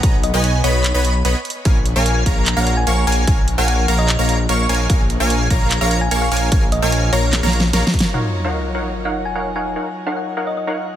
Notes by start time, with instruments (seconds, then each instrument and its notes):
0.03 detuned saw bass B1, supersaw synth B3 B4 C#5 D#5 A#5, digital synth lead A#5, kick, closed hi-hat
0.23 synth pluck D#5, closed hi-hat
0.34 detuned saw bass B1, supersaw synth B3 B4 C#5 D#5 G#5, synth pluck D#5, digital synth lead G#5
0.44 closed hi-hat
0.64 detuned saw bass B1, supersaw synth B3 B4 C#5 D#5 B5, synth pluck C#5, digital synth lead B5, closed hi-hat
0.84 clap, closed hi-hat
0.94 detuned saw bass B1, supersaw synth B3 B4 C#5 D#5 B5, digital synth lead B5
1.05 closed hi-hat
1.25 detuned saw bass B1, supersaw synth B3 B4 C#5 D#5 B5, digital synth lead B5, closed hi-hat
1.45 closed hi-hat
1.50 closed hi-hat
1.65 detuned saw bass A#1, supersaw synth A#3 A#4 C#5 F5 G#5, digital synth lead G#5, kick, closed hi-hat
1.86 closed hi-hat
1.96 detuned saw bass A#1, supersaw synth A#3 A#4 C#5 F5 G#5, digital synth lead G#5
2.06 closed hi-hat
2.26 detuned saw bass A#1, supersaw synth A#3 A#4 C#5 F5 A#5, digital synth lead A#5, kick, closed hi-hat
2.46 clap, closed hi-hat
2.57 detuned saw bass A#1, supersaw synth A#3 A#4 C#5 F5 A#5, synth pluck F#5, digital synth lead A#5
2.67 closed hi-hat
2.77 synth pluck G#5
2.87 detuned saw bass A#1, supersaw synth A#3 A#4 C#5 F5 C#6, synth pluck G#5, digital synth lead C#6, closed hi-hat
3.07 detuned saw bass A#1, supersaw synth A#3 A#4 C#5 F5 G#5, synth pluck G#5, digital synth lead G#5, closed hi-hat
3.12 closed hi-hat
3.27 detuned saw bass A#1, supersaw synth A#3 A#4 C#5 F5 G#5, digital synth lead G#5, kick, closed hi-hat
3.48 closed hi-hat
3.58 detuned saw bass A#1, supersaw synth A#3 A#4 C#5 F5 G#5, synth pluck F#5, digital synth lead G#5
3.68 synth pluck F#5, closed hi-hat
3.88 detuned saw bass A#1, supersaw synth A#3 A#4 C#5 F5 A#5, digital synth lead A#5, closed hi-hat
3.99 synth pluck D#5
4.09 synth pluck D#5, clap, closed hi-hat
4.19 detuned saw bass A#1, supersaw synth A#3 A#4 C#5 F5 A#5, digital synth lead A#5
4.29 closed hi-hat
4.49 detuned saw bass A#1, supersaw synth A#3 A#4 C#5 F5 C#6, digital synth lead C#6, closed hi-hat
4.69 detuned saw bass A#1, supersaw synth A#3 A#4 C#5 F5 G#5, digital synth lead G#5, closed hi-hat
4.75 closed hi-hat
4.90 detuned saw bass A#1, supersaw synth A#3 A#4 C#5 F5 G#5, digital synth lead G#5, kick, closed hi-hat
5.10 closed hi-hat
5.20 detuned saw bass A#1, supersaw synth A#3 A#4 C#5 F5 G#5, digital synth lead G#5
5.30 closed hi-hat
5.50 detuned saw bass A#1, supersaw synth A#3 A#4 C#5 F5 A#5, digital synth lead A#5, kick, closed hi-hat
5.71 clap, closed hi-hat
5.81 detuned saw bass A#1, supersaw synth A#3 A#4 C#5 F5 A#5, synth pluck F5, digital synth lead A#5
5.91 closed hi-hat
6.01 synth pluck G#5
6.11 detuned saw bass A#1, supersaw synth A#3 A#4 C#5 F5 C#6, synth pluck G#5, digital synth lead C#6, closed hi-hat
6.22 synth pluck F5
6.32 detuned saw bass A#1, supersaw synth A#3 A#4 C#5 F5 G#5, synth pluck F5, digital synth lead G#5, closed hi-hat
6.37 closed hi-hat
6.52 detuned saw bass A#1, supersaw synth A#3 A#4 C#5 F5, digital synth lead G#5, kick, closed hi-hat
6.72 synth pluck D#5, closed hi-hat
6.82 detuned saw bass A#1, supersaw synth A#3 A#4 C#5 F5 G#5, synth pluck D#5, digital synth lead G#5
6.92 closed hi-hat
7.13 detuned saw bass A#1, supersaw synth A#3 A#4 C#5 F5 A#5, synth pluck C#5, digital synth lead A#5, closed hi-hat
7.33 snare, clap, closed hi-hat
7.43 detuned saw bass A#1, supersaw synth A#3 A#4 C#5 F5 A#5, digital synth lead A#5, snare
7.53 closed hi-hat
7.60 snare
7.73 detuned saw bass A#1, supersaw synth A#3 A#4 C#5 F5 A#5, digital synth lead A#5, snare, closed hi-hat
7.87 snare
7.94 kick, closed hi-hat
7.99 snare, closed hi-hat
8.12 tine electric piano F#3 D#4 F4, supersaw synth D#4 A#4 C#5 F5 F#5, sub drop
8.16 tine electric piano C#5
8.44 supersaw synth D#4 A#4 C#5 F5 F#5
8.75 supersaw synth D#4 A#4 C#5 F5 F#5
9.05 supersaw synth D#4 A#4 C#5 F5 F#5, synth pluck F#5
9.25 synth pluck G#5
9.35 supersaw synth D#4 A#4 C#5 F5 F#5, synth pluck G#5
9.56 supersaw synth D#4 A#4 C#5 F5 F#5, synth pluck G#5
9.76 supersaw synth D#4 A#4 C#5 F5 F#5
10.07 supersaw synth D#4 A#4 C#5 F5 F#5, synth pluck F#5
10.17 synth pluck F#5
10.37 supersaw synth D#4 A#4 C#5 F5 F#5
10.47 synth pluck D#5
10.57 synth pluck D#5
10.67 supersaw synth D#4 A#4 C#5 F5 F#5